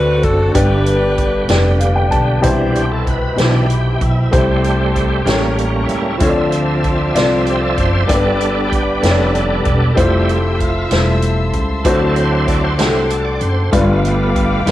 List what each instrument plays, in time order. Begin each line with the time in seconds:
Already playing: upright bass D2, upright piano D3 C4 F#4 A4 D5, tonewheel organ D3 A3 C4 F#4, saxophone section F#4 B4
0.23 upright bass F#1, saxophone section A4, kick, closed hi-hat
0.54 upright bass G1, upright piano G2 B3 D4 G4 D5, tonewheel organ D3 G3 B3 G4, saxophone section D4 G4 B4, kick, closed hi-hat
0.86 closed hi-hat
1.18 kick, closed hi-hat
1.49 upright bass F1, upright piano B3 D4 G4 D5, snare, closed hi-hat
1.80 upright piano F5, closed hi-hat
1.96 upright piano G5
2.11 upright bass B1, upright piano A5, kick, closed hi-hat
2.41 upright bass C2, upright piano B2 C3 E4 G4 C5, tonewheel organ E3 G3 D4, string section E5 G5 B5, kick, closed hi-hat
2.75 tonewheel organ G4, closed hi-hat
2.92 tonewheel organ A4
3.07 tonewheel organ B4, kick, closed hi-hat
3.36 upright bass B1, upright piano B2 D#4 G4 C5, tonewheel organ B2 E3 D4 G4, snare, closed hi-hat
3.43 upright piano E4
3.70 closed hi-hat
4.01 upright bass B1, tonewheel organ E4, kick, closed hi-hat
4.31 upright bass C2, upright piano C3 A3 E4 G4 C5, tonewheel organ G3 A3 C4 G4, string section A5 C6, kick, closed hi-hat
4.64 closed hi-hat
4.94 tonewheel organ G4, kick, closed hi-hat
5.24 upright bass A1, upright piano A2 A#3 G4 A4, tonewheel organ G3 A#3 C#4, string section A5 A#5 C#6, closed hi-hat
5.28 upright piano C#5, snare
5.58 closed hi-hat
5.86 upright bass C#2, tonewheel organ E4, closed hi-hat
6.18 upright bass D2, tonewheel organ F3 C4 F4 E5, upright piano C4 F4, string section F4 C6 D6, kick, closed hi-hat
6.22 upright piano D3 A4 C#5
6.29 upright piano D5
6.52 closed hi-hat
6.84 kick, closed hi-hat
7.15 upright bass C2, upright piano C4 F4 A4 D5, snare, closed hi-hat
7.46 tonewheel organ G4, closed hi-hat
7.60 tonewheel organ A4
7.76 upright bass F#1, tonewheel organ C5, kick, closed hi-hat
8.06 upright bass G1, upright piano G2 A#3 D4 G4 D5, tonewheel organ G3 B3 D4 A4, string section D5 G5 B5, kick, closed hi-hat
8.15 upright piano B3
8.41 closed hi-hat
8.68 tonewheel organ G4
8.72 kick, closed hi-hat
9.01 upright bass F1, upright piano B3 D4 G4 C#5, tonewheel organ A4, snare, closed hi-hat
9.11 upright piano D5
9.35 closed hi-hat
9.63 upright bass E1, tonewheel organ A4, kick, closed hi-hat
9.94 upright bass F1, tonewheel organ G3 A3 G4 E5, upright piano A3 E4 F4 C5, string section E5 A5 C6 E6, kick, closed hi-hat
10.29 closed hi-hat
10.58 tonewheel organ F4, kick, closed hi-hat
10.88 upright bass E1, upright piano G3 E4 F4, tonewheel organ E4, snare, closed hi-hat
10.93 upright piano C5
10.97 upright piano A3
11.22 closed hi-hat
11.53 upright bass C#2, kick, closed hi-hat
11.84 upright bass D2, upright piano D3 A3 D4 F#4 C5, tonewheel organ F#3 C4 E4 A4, string section F#5 D6, kick, closed hi-hat
12.16 tonewheel organ C5, closed hi-hat
12.48 tonewheel organ D5, kick, closed hi-hat
12.64 tonewheel organ C5
12.78 upright bass C2, tonewheel organ F#3 C4 E4, upright piano A3 D4 F#4 G4, snare, closed hi-hat
12.87 upright piano A4
13.10 tonewheel organ A4, closed hi-hat
13.25 tonewheel organ D5
13.41 upright bass F#1, tonewheel organ C5, closed hi-hat
13.71 upright bass G1, upright piano G2 G3 D4 F4 B4, tonewheel organ A3 B3 F4, string section F5 G5 B5 D6, kick, closed hi-hat
14.05 closed hi-hat
14.36 kick, closed hi-hat
14.66 upright bass F1, upright piano G3 D4 F4 B4, tonewheel organ G4, closed hi-hat